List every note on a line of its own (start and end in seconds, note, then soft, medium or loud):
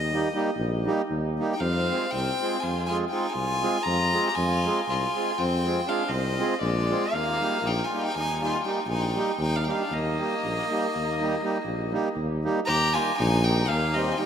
0.00 0.29 D#2 medium
0.00 1.05 D#5 loud
0.12 0.28 G3 medium
0.12 0.28 A#3 medium
0.12 0.29 D#4 medium
0.12 0.29 G4 medium
0.34 0.50 G3 medium
0.34 0.50 A#3 medium
0.34 0.51 D#4 medium
0.34 0.51 G4 medium
0.56 0.87 A#1 loud
0.85 1.01 G3 medium
0.85 1.01 A#3 medium
0.85 1.02 D#4 medium
0.85 1.02 G4 medium
1.10 1.40 D#2 medium
1.39 1.54 G3 medium
1.39 1.54 A#3 medium
1.39 1.54 D#4 medium
1.39 1.55 G4 medium
1.54 1.63 D#4 medium
1.54 1.62 G5 medium
1.60 1.91 F2 loud
1.60 2.14 C4 loud
1.60 2.13 F5 loud
1.90 2.05 G#3 medium
1.90 2.05 C4 soft
1.90 2.06 F4 medium
1.90 2.06 G#4 medium
2.11 2.29 C2 medium
2.11 2.64 C4 medium
2.11 2.62 G5 loud
2.41 2.56 G#3 medium
2.41 2.57 C4 medium
2.41 2.57 F4 medium
2.41 2.57 G#4 medium
2.60 3.05 F2 medium
2.60 2.87 F4 medium
2.60 2.85 G#5 medium
2.86 3.04 G#3 medium
2.86 3.04 C4 medium
2.86 2.98 F4 medium
2.86 2.97 G#5 loud
2.91 3.05 F4 soft
2.91 3.05 G#4 medium
3.10 3.26 G#3 medium
3.10 3.26 C4 medium
3.10 3.35 D#4 medium
3.10 3.27 F4 medium
3.10 3.27 G#4 medium
3.10 3.31 G5 medium
3.30 3.83 F4 medium
3.30 3.84 G#5 loud
3.35 3.65 C2 medium
3.62 3.77 G#3 medium
3.62 3.77 C4 medium
3.62 3.78 F4 medium
3.62 3.78 G#4 medium
3.83 4.16 F2 loud
3.83 4.29 F4 loud
3.83 4.29 A#5 loud
4.12 4.28 G#3 medium
4.12 4.29 C4 medium
4.12 4.29 F4 medium
4.12 4.29 G#4 medium
4.27 4.37 G4 medium
4.27 4.37 A#5 medium
4.35 4.68 F2 loud
4.35 4.88 F4 loud
4.35 4.84 G#5 loud
4.64 4.80 G#3 soft
4.64 4.80 C4 soft
4.64 4.81 F4 medium
4.64 4.81 G#4 medium
4.84 5.40 G#5 loud
4.88 5.05 C2 medium
4.88 5.42 F4 medium
5.15 5.32 G#3 medium
5.15 5.32 C4 soft
5.15 5.32 F4 soft
5.15 5.33 G#4 medium
5.38 5.81 F2 medium
5.38 5.89 C4 medium
5.38 5.91 G5 loud
5.65 5.80 G#3 medium
5.65 5.80 C4 medium
5.65 5.81 F4 soft
5.65 5.81 G#4 medium
5.87 6.03 G#3 medium
5.87 6.03 C4 medium
5.87 6.12 D4 medium
5.87 6.03 F4 medium
5.87 6.04 G#4 medium
5.87 6.10 F5 medium
6.09 6.40 C2 medium
6.09 6.62 C4 medium
6.09 6.61 D#5 loud
6.38 6.54 G#3 medium
6.38 6.54 C4 medium
6.38 6.54 F4 medium
6.38 6.55 G#4 medium
6.61 6.92 A#1 loud
6.61 7.17 G#3 medium
6.61 7.14 D5 loud
6.89 7.05 G#3 medium
6.89 7.06 C4 medium
6.89 7.06 F4 medium
6.89 7.06 G#4 medium
7.13 7.44 D#2 medium
7.13 7.68 A#3 loud
7.13 7.69 F5 loud
7.41 7.57 G3 medium
7.41 7.57 A#3 soft
7.41 7.57 D#4 medium
7.41 7.57 G4 medium
7.63 7.80 A#1 loud
7.63 7.87 D#4 medium
7.67 7.86 G5 loud
7.85 8.05 F4 medium
7.85 8.03 G#5 medium
7.92 8.09 G3 medium
7.92 8.09 A#3 soft
7.92 8.09 D#4 medium
7.92 8.10 G4 medium
8.02 8.17 D#4 medium
8.02 8.17 G5 loud
8.15 8.58 D#2 medium
8.15 8.41 D#4 medium
8.15 8.41 G#5 loud
8.41 8.57 G3 medium
8.41 8.57 A#3 medium
8.41 8.57 D#4 medium
8.41 8.64 F4 medium
8.41 8.58 G4 medium
8.41 8.63 G#5 medium
8.64 8.79 G3 medium
8.64 8.80 A#3 medium
8.64 8.80 D#4 medium
8.64 8.87 D#4 medium
8.64 8.80 G4 medium
8.64 8.85 G5 medium
8.86 9.17 A#1 medium
8.86 9.03 D#4 medium
8.86 9.03 G#5 medium
9.01 9.39 D#4 medium
9.01 9.39 G5 medium
9.15 9.31 G3 medium
9.15 9.31 A#3 medium
9.15 9.32 D#4 medium
9.15 9.32 G4 medium
9.38 9.69 D#2 loud
9.38 9.58 D#4 medium
9.38 9.58 G5 loud
9.56 9.63 D4 medium
9.56 9.66 F5 loud
9.62 9.73 D#4 medium
9.62 9.72 G5 medium
9.66 9.83 G3 medium
9.66 9.83 A#3 medium
9.66 9.83 D#4 medium
9.66 9.83 G4 medium
9.70 9.94 D4 medium
9.70 9.95 F5 medium
9.90 10.21 D#2 medium
9.90 12.16 A#3 medium
9.90 12.17 D#5 loud
10.18 10.34 G3 medium
10.18 10.35 A#3 medium
10.18 10.35 D#4 soft
10.18 10.35 G4 medium
10.44 10.60 A#1 medium
10.70 10.86 G3 medium
10.70 10.86 A#3 medium
10.70 10.86 D#4 medium
10.70 10.87 G4 medium
10.96 11.37 D#2 medium
11.20 11.35 G3 medium
11.20 11.35 A#3 medium
11.20 11.35 D#4 medium
11.20 11.36 G4 medium
11.43 11.57 G3 medium
11.43 11.58 A#3 medium
11.43 11.58 D#4 medium
11.43 11.58 G4 medium
11.65 11.95 A#1 medium
11.92 12.08 G3 medium
11.92 12.08 A#3 medium
11.92 12.09 D#4 medium
11.92 12.09 G4 medium
12.16 12.46 D#2 medium
12.44 12.60 G3 medium
12.44 12.60 A#3 medium
12.44 12.60 D#4 medium
12.44 12.60 G4 medium
12.66 12.98 D#2 medium
12.66 12.97 G4 loud
12.66 12.95 A#5 loud
12.94 13.11 D#3 medium
12.94 13.11 G3 soft
12.94 13.12 A#3 medium
12.94 13.12 D#4 medium
12.94 13.16 F4 loud
12.94 13.12 G4 medium
12.94 13.17 G#5 loud
13.16 13.72 A#1 loud
13.16 13.45 D#4 loud
13.16 13.46 G#5 loud
13.44 13.62 D#3 medium
13.44 13.62 G3 medium
13.44 13.63 A#3 medium
13.44 13.70 D#4 medium
13.44 13.63 D#4 medium
13.44 13.63 G4 medium
13.44 13.70 G5 loud
13.68 14.12 D#2 loud
13.68 13.97 A#3 medium
13.68 13.96 F5 loud
13.93 14.10 D#3 medium
13.93 14.10 G3 medium
13.93 14.10 A#3 medium
13.93 14.15 C4 medium
13.93 14.11 D#4 medium
13.93 14.11 G4 medium
13.93 14.13 D#5 loud
14.12 14.20 F4 medium
14.12 14.20 G#5 medium
14.17 14.26 D#3 medium
14.17 14.26 G3 medium
14.17 14.26 A#3 medium
14.17 14.26 D#4 medium
14.17 14.26 G4 medium
14.17 14.26 G5 medium